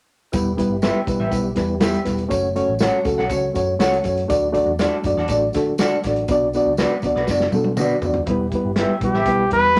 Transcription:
0.32 E1 G3 B3 E4 G4 B4, kick, closed hi-hat, tambourine
0.57 G3 B3 E4 B4, kick, closed hi-hat, tambourine
0.70 G1
0.82 G3 B3 E4 G4 B4 E5, snare, closed hi-hat, tambourine
1.07 B1 G3 B3 E4 B4, kick, closed hi-hat, tambourine
1.18 A1 G4 B4 E5
1.30 B1 G3 B3 E4 B4, kick, closed hi-hat, tambourine
1.55 E2 G3 B3 E4 B4, kick, snare, closed hi-hat, tambourine
1.80 G3 B3 E4 G4 B4 E5, snare, closed hi-hat, tambourine
1.94 closed hi-hat
2.04 E1 G3 B3 E4 B4, kick, snare, closed hi-hat, tambourine
2.18 closed hi-hat
2.29 F#1 F#3 A3 C#4 F#4 C#5, kick, closed hi-hat, tambourine
2.55 A3 C#4 F#4 C#5, closed hi-hat, tambourine
2.69 A1
2.79 A3 C#4 F#4 A4 C#5 F#5, snare, closed hi-hat, tambourine
3.05 C#2 A3 C#4 F#4 A4, kick, closed hi-hat, tambourine
3.18 B1 A4 C#5 F#5, snare
3.29 C#2 A3 C#4 F#4 C#5, kick, closed hi-hat, tambourine
3.53 F#2 A3 C#4 F#4 C#5, kick, closed hi-hat, tambourine
3.79 C#2 A3 C#4 F#4 A4 C#5 F#5, snare, closed hi-hat, tambourine
3.93 closed hi-hat
4.04 F#2 A3 C#4 F#4 C#5, kick, closed hi-hat, tambourine
4.17 closed hi-hat
4.28 D2 A3 D4 F#4 D5, kick, closed hi-hat, tambourine
4.52 A3 D4 F#4 D5, kick, closed hi-hat, tambourine
4.66 E2
4.79 A3 D4 F#4 A4 D5, snare, closed hi-hat, tambourine
5.04 F#2 A3 D4 F#4 D5, kick, closed hi-hat, tambourine
5.16 E2 F#4 A4 D5, snare
5.28 A1 A3 D4 F#4 D5, kick, closed hi-hat, tambourine
5.53 D3 A3 D4 F#4 A4, kick, snare, closed hi-hat, tambourine
5.78 A3 D4 F#4 A4 D5, snare, closed hi-hat, tambourine
6.03 A1 A3 D4 F#4 D5, kick, snare, closed hi-hat, tambourine
6.16 closed hi-hat
6.28 B1 B3 D4 F#4 D5, kick, closed hi-hat, tambourine
6.53 B3 D4 F#4 D5, closed hi-hat, tambourine
6.65 C#2
6.77 B3 D4 F#4 B4 D5, snare, closed hi-hat, tambourine
6.81 D5
7.02 D2 B3 D4 F#4, kick, closed hi-hat, tambourine
7.07 D5
7.15 B1 F#4 B4 D5, snare
7.27 F#1 B3 D4 F#4, kick, snare, tambourine
7.31 D5
7.40 snare
7.52 B2 B3 D4 F#4 A4, high tom, tambourine
7.64 high tom
7.77 B3 D4 F#4 B4 D5, mid tom, tambourine
7.81 D5
8.02 D2 B3 D4 F#4, floor tom, tambourine
8.06 D5
8.14 floor tom
8.26 E1 G3 B3 E4 G4, kick, closed hi-hat
8.30 E4 B4
8.52 G3 B3 E4 B4, kick, closed hi-hat
8.64 G1
8.76 G3 B3 E4 G4 B4 E5, snare, closed hi-hat
9.01 B1 G3 B3 E4 G4 B4, kick, closed hi-hat
9.13 A1 G4 B4 E5, snare
9.26 B1 G3 B3 E4 B4, kick, closed hi-hat
9.51 E2 G3 B3 E4 B4, kick, closed hi-hat
9.75 G3 B3 E4 G4, closed hi-hat

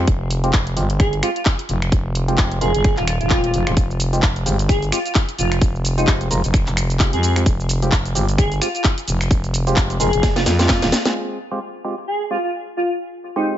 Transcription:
0.07 F1, kick, closed hi-hat
0.31 open hi-hat
0.44 G#3 C4 F4 G4, closed hi-hat
0.53 F1, kick, clap, closed hi-hat
0.67 closed hi-hat
0.77 G1 G#3 C4 F4 G4, open hi-hat
0.90 closed hi-hat
1.00 G#4, finger snap, kick, closed hi-hat
1.13 closed hi-hat
1.23 G#3 C4 F4 G4, finger snap, open hi-hat
1.36 F4, closed hi-hat
1.45 kick, clap, closed hi-hat
1.59 closed hi-hat
1.69 F1, open hi-hat
1.82 finger snap, closed hi-hat
1.92 F1, kick, closed hi-hat
2.15 open hi-hat
2.28 G#3 C4 F4 G4, closed hi-hat
2.38 F1, kick, clap, closed hi-hat
2.51 closed hi-hat
2.61 F1 G#3 C4 F4 G#4 A#4, open hi-hat
2.74 G1, closed hi-hat
2.84 finger snap, kick, closed hi-hat
2.97 D#1 F4, clap, closed hi-hat
3.07 F4, finger snap, open hi-hat
3.21 D#1 F4, closed hi-hat
3.30 G#3 C4 F4 G4, kick, clap, closed hi-hat
3.44 closed hi-hat
3.54 F1, open hi-hat
3.67 D#1 G#3 C4 F4 G4, finger snap, closed hi-hat
3.77 F1, kick, closed hi-hat, shaker
3.91 shaker
4.00 open hi-hat, shaker
4.13 G#3 C4 F4 G4, closed hi-hat, shaker
4.22 F1, kick, clap, closed hi-hat, shaker
4.36 closed hi-hat, shaker
4.46 G1 G#3 C4 F4 G4, open hi-hat, shaker
4.59 closed hi-hat, shaker
4.69 G#4, finger snap, kick, closed hi-hat, shaker
4.82 closed hi-hat, shaker
4.92 G#3 C4 F4 G4, finger snap, open hi-hat, shaker
5.05 F4, closed hi-hat, shaker
5.15 kick, clap, closed hi-hat, shaker
5.29 closed hi-hat, shaker
5.38 F1 F4, open hi-hat, shaker
5.52 finger snap, closed hi-hat, shaker
5.61 F1, kick, closed hi-hat, shaker
5.75 shaker
5.85 open hi-hat, shaker
5.97 G#3 C4 D#4 F4 G4, closed hi-hat, shaker
6.07 F1, kick, clap, closed hi-hat, shaker
6.21 closed hi-hat, shaker
6.31 F1 G#3 C4 F4 A#4, open hi-hat, shaker
6.44 F1, closed hi-hat, shaker
6.54 finger snap, kick, closed hi-hat, shaker
6.67 F1, clap, closed hi-hat, shaker
6.77 finger snap, open hi-hat, shaker
6.90 closed hi-hat, shaker
6.99 G#3 C4 F4 G4, kick, clap, closed hi-hat, shaker
7.13 F2 G#4, closed hi-hat, shaker
7.23 G#4, open hi-hat, shaker
7.36 G#3 C4 F4 G4, finger snap, closed hi-hat, shaker
7.46 F1, kick, closed hi-hat, shaker
7.60 shaker
7.69 open hi-hat, shaker
7.82 G#3 C4 F4 G4, closed hi-hat, shaker
7.92 F1, kick, clap, closed hi-hat, shaker
8.05 closed hi-hat, shaker
8.15 G1 G#3 C4 F4 G4, open hi-hat, shaker
8.29 closed hi-hat, shaker
8.38 G#4, finger snap, kick, closed hi-hat, shaker
8.52 closed hi-hat, shaker
8.61 G#3 C4 F4 G4, finger snap, open hi-hat, shaker
8.75 F4, closed hi-hat, shaker
8.84 kick, clap, closed hi-hat, shaker
8.98 closed hi-hat, shaker
9.08 F1, open hi-hat, shaker
9.21 finger snap, closed hi-hat, shaker
9.31 F1, kick, closed hi-hat, shaker
9.44 closed hi-hat, shaker
9.54 open hi-hat, shaker
9.67 G#3 C4 F4 G4, closed hi-hat, shaker
9.76 F1, kick, clap, closed hi-hat, shaker
9.90 closed hi-hat, shaker
10.00 F1 G#3 C4 F4 G#4 A#4, open hi-hat, shaker
10.13 F1, closed hi-hat, shaker
10.23 kick, snare, closed hi-hat, shaker
10.36 F4, snare, closed hi-hat, shaker
10.46 F2 F4, snare, open hi-hat, shaker
10.59 G#3 C4 F4 G4, snare, closed hi-hat, shaker
10.69 kick, snare, clap, closed hi-hat, shaker
10.82 D#1 G#3 C4 F4 G4, snare, closed hi-hat, shaker
10.92 snare, open hi-hat, shaker
11.05 G#3 C4 F4 G#4, snare, closed hi-hat, shaker
11.52 G#3 C4 F4 G4
11.85 G#3 C4 F4 G4
12.08 G#4
12.31 G#3 C4 F4 G4
12.44 F4
12.77 F4
13.36 G#3 C4 D#4 F4 G4

